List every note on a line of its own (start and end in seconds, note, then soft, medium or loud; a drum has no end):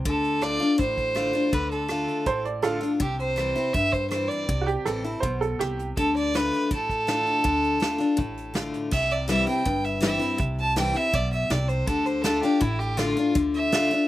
0.05 0.57 D2 medium
0.05 0.40 D3 medium
0.05 0.44 A4 medium
0.05 kick medium
0.05 closed hi-hat medium
0.24 closed hi-hat medium
0.42 0.59 D3 medium
0.42 0.60 A3 medium
0.42 0.60 D4 medium
0.42 0.59 F4 medium
0.42 0.79 D5 loud
0.42 cross-stick medium
0.42 closed hi-hat medium
0.60 0.79 D4 soft
0.60 0.78 F4 medium
0.60 closed hi-hat medium
0.78 1.31 A1 medium
0.78 1.49 A2 medium
0.78 1.54 C5 loud
0.78 kick loud
0.78 closed hi-hat medium
0.97 kick medium
0.97 closed hi-hat medium
1.15 1.33 D3 medium
1.15 1.33 A3 medium
1.15 1.34 D4 medium
1.15 1.32 F4 medium
1.15 cross-stick loud
1.15 closed hi-hat medium
1.33 1.52 D4 soft
1.33 1.52 F4 medium
1.33 closed hi-hat medium
1.53 2.05 D2 medium
1.53 1.87 D3 medium
1.53 1.71 B4 medium
1.53 kick loud
1.53 closed hi-hat medium
1.71 2.41 A4 medium
1.71 closed hi-hat medium
1.88 2.24 D3 medium
1.88 2.25 A3 medium
1.88 2.25 D4 medium
1.88 2.26 F4 medium
1.88 cross-stick loud
1.88 closed hi-hat medium
2.08 closed hi-hat medium
2.26 2.79 A1 medium
2.26 2.97 A2 medium
2.26 2.45 C5 loud
2.26 kick medium
2.26 closed hi-hat medium
2.45 2.63 D5 medium
2.45 closed hi-hat medium
2.62 2.81 D3 soft
2.62 2.81 A3 medium
2.62 2.82 D4 medium
2.62 2.89 F4 medium
2.62 2.80 F4 medium
2.62 2.90 A4 medium
2.62 cross-stick medium
2.62 closed hi-hat medium
2.81 3.00 D4 soft
2.81 2.99 F4 medium
2.81 closed hi-hat medium
3.00 3.52 C2 medium
3.00 3.70 C3 medium
3.00 3.18 G4 medium
3.00 kick medium
3.00 closed hi-hat medium
3.19 3.75 C5 medium
3.19 closed hi-hat medium
3.36 3.55 E3 medium
3.36 3.55 G3 soft
3.36 3.55 C4 medium
3.36 3.54 E4 medium
3.36 cross-stick medium
3.36 closed hi-hat medium
3.56 3.75 C4 soft
3.56 3.74 E4 soft
3.56 closed hi-hat medium
3.73 4.45 G2 medium
3.73 4.26 G2 medium
3.73 3.94 E5 loud
3.73 kick loud
3.73 closed hi-hat medium
3.92 4.09 C5 medium
3.92 kick medium
3.92 closed hi-hat medium
4.10 4.46 E3 medium
4.10 4.47 G3 medium
4.10 4.47 C4 soft
4.10 4.47 E4 medium
4.10 4.29 C5 medium
4.10 cross-stick loud
4.10 closed hi-hat medium
4.28 4.66 D5 medium
4.28 closed hi-hat medium
4.49 4.75 C2 medium
4.49 5.19 C3 medium
4.49 kick loud
4.49 closed hi-hat medium
4.61 4.64 F#4 medium
4.66 4.85 G4 medium
4.66 closed hi-hat medium
4.85 5.17 A1 medium
4.85 5.04 E3 medium
4.85 5.04 G3 medium
4.85 5.04 C4 medium
4.85 5.03 E4 medium
4.85 5.21 A4 medium
4.85 cross-stick loud
4.85 closed hi-hat medium
5.04 5.23 C4 soft
5.04 5.22 E4 medium
5.04 closed hi-hat medium
5.20 5.54 B1 medium
5.20 5.58 B2 medium
5.20 5.39 C5 medium
5.20 kick loud
5.20 closed hi-hat medium
5.41 5.59 A4 medium
5.41 closed hi-hat medium
5.59 5.91 C2 medium
5.59 5.95 C3 medium
5.59 5.86 G4 medium
5.59 cross-stick loud
5.59 closed hi-hat medium
5.79 closed hi-hat medium
5.97 6.49 D2 medium
5.97 6.33 D3 medium
5.97 6.14 A4 medium
5.97 kick loud
5.97 closed hi-hat medium
6.16 6.37 D5 medium
6.16 closed hi-hat medium
6.34 6.69 D3 medium
6.34 6.69 A3 soft
6.34 6.69 D4 medium
6.34 6.70 F4 medium
6.34 6.71 B4 medium
6.34 snare medium
6.34 closed hi-hat medium
6.53 closed hi-hat medium
6.71 7.23 A1 medium
6.71 7.41 A2 medium
6.71 8.53 A4 loud
6.71 kick loud
6.71 closed hi-hat medium
6.89 kick medium
6.89 closed hi-hat medium
7.07 7.42 D3 soft
7.07 7.43 A3 medium
7.07 7.43 D4 medium
7.07 7.44 F4 medium
7.07 snare loud
7.07 closed hi-hat medium
7.27 closed hi-hat soft
7.44 7.97 D2 medium
7.44 7.79 D3 medium
7.44 kick loud
7.44 closed hi-hat medium
7.64 closed hi-hat medium
7.80 7.98 D3 soft
7.80 7.99 A3 medium
7.80 7.99 D4 medium
7.80 7.97 F4 medium
7.80 snare medium
7.80 closed hi-hat medium
7.98 8.18 D4 soft
7.98 8.17 F4 soft
7.98 closed hi-hat medium
8.17 8.70 A1 medium
8.17 8.88 A2 medium
8.17 kick loud
8.17 closed hi-hat medium
8.37 closed hi-hat medium
8.54 8.89 D3 medium
8.54 8.90 A3 soft
8.54 8.90 D4 soft
8.54 8.91 F4 medium
8.54 snare medium
8.54 closed hi-hat medium
8.74 closed hi-hat medium
8.91 9.44 C2 medium
8.91 9.62 C3 medium
8.91 9.13 E5 medium
8.91 kick loud
8.91 crash medium
9.11 9.29 D5 medium
9.11 closed hi-hat medium
9.28 9.46 E3 medium
9.28 9.47 G3 medium
9.28 9.47 C4 medium
9.28 9.46 E4 medium
9.28 9.47 E5 medium
9.28 snare medium
9.28 closed hi-hat medium
9.47 9.66 C4 soft
9.47 9.65 E4 medium
9.47 9.86 G5 medium
9.47 closed hi-hat medium
9.65 10.18 G1 medium
9.65 10.36 G2 medium
9.65 kick loud
9.65 closed hi-hat medium
9.84 10.02 E5 medium
9.84 closed hi-hat medium
10.01 10.19 E3 medium
10.01 10.20 G3 medium
10.01 10.20 C4 medium
10.01 10.18 E4 medium
10.01 10.39 E5 medium
10.01 snare loud
10.01 closed hi-hat medium
10.19 10.39 C4 medium
10.19 10.38 E4 medium
10.19 closed hi-hat medium
10.38 10.92 C2 medium
10.38 11.09 C3 medium
10.38 kick loud
10.38 closed hi-hat medium
10.58 10.77 A5 medium
10.58 closed hi-hat medium
10.76 10.94 E3 medium
10.76 10.95 G3 medium
10.76 10.95 C4 medium
10.76 10.93 E4 medium
10.76 10.98 G5 medium
10.76 snare medium
10.76 closed hi-hat medium
10.94 11.14 C4 soft
10.94 11.13 E4 medium
10.94 11.16 E5 medium
10.94 closed hi-hat medium
11.13 11.45 B1 medium
11.13 11.49 B2 medium
11.13 11.32 D5 medium
11.13 kick loud
11.13 closed hi-hat medium
11.32 11.52 E5 medium
11.32 closed hi-hat medium
11.50 11.82 C2 medium
11.50 11.86 C3 medium
11.50 11.70 D5 medium
11.50 snare loud
11.50 closed hi-hat medium
11.68 11.88 C5 medium
11.68 closed hi-hat medium
11.87 12.39 D2 medium
11.87 12.23 D3 medium
11.87 12.07 A4 medium
11.87 kick loud
11.87 closed hi-hat medium
12.05 12.23 C5 medium
12.05 closed hi-hat medium
12.22 12.42 D3 medium
12.22 12.43 A3 medium
12.22 12.43 D4 medium
12.22 12.41 A4 medium
12.22 snare loud
12.22 closed hi-hat medium
12.26 12.42 F4 medium
12.42 12.62 D4 soft
12.42 12.61 F4 medium
12.42 12.62 G4 medium
12.42 closed hi-hat medium
12.60 13.13 A1 medium
12.60 13.31 A2 medium
12.60 12.80 E4 medium
12.60 kick loud
12.60 closed hi-hat medium
12.79 12.99 G4 medium
12.79 closed hi-hat medium
12.97 13.16 D3 medium
12.97 13.16 A3 medium
12.97 13.16 D4 medium
12.97 13.34 F4 medium
12.97 13.16 F4 medium
12.97 snare loud
12.97 closed hi-hat medium
13.17 13.36 D4 medium
13.17 13.35 F4 medium
13.17 closed hi-hat medium
13.35 13.87 D2 medium
13.35 13.71 D3 medium
13.35 kick loud
13.35 closed hi-hat medium
13.54 14.08 E5 loud
13.54 closed hi-hat medium
13.72 13.90 D3 medium
13.72 13.91 A3 medium
13.72 13.91 D4 medium
13.72 13.89 F4 medium
13.72 snare loud
13.72 closed hi-hat medium
13.91 14.08 D4 soft
13.91 14.08 F4 medium
13.91 closed hi-hat medium